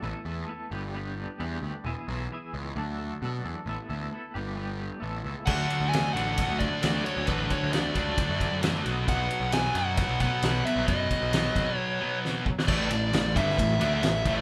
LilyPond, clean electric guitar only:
\new Staff \with { instrumentName = "Clean electric guitar" } { \time 4/4 \key d \lydian \tempo 4 = 133 <a b e' a'>8 <b e' a'>8 <a b e' a'>8 <g b d' g'>8 <g b d' g'>8 <b d' g'>8 <g b d' g'>8 <b d' g'>8 | <e b e' gis'>8 <b e' gis'>8 <e b e' gis'>4 <d fis a d' a'>8 <a d' a'>8 <fis a d' a'>8 <a d' a'>8 | <a b e' a'>8 <b e' a'>8 <a b e' a'>8 <g b d' g'>8 <g b d' g'>8 <b d' g'>8 <a b e' a'>8 <b e' a'>8 | <d fis a d' fis'>8 <a d' fis'>8 <d fis a d' fis'>8 <a d' fis'>8 <d fis a d' fis'>8 <a d' fis'>8 <fis a d' fis'>8 <a d' fis'>8 |
<d fis a d' fis'>8 <a d' fis'>8 <d fis a d' fis'>8 <a d' fis'>8 <d fis a d' fis'>8 <a d' fis'>8 <fis a d' fis'>8 <b, fis b dis' fis'>8 | r1 | r1 | r1 | }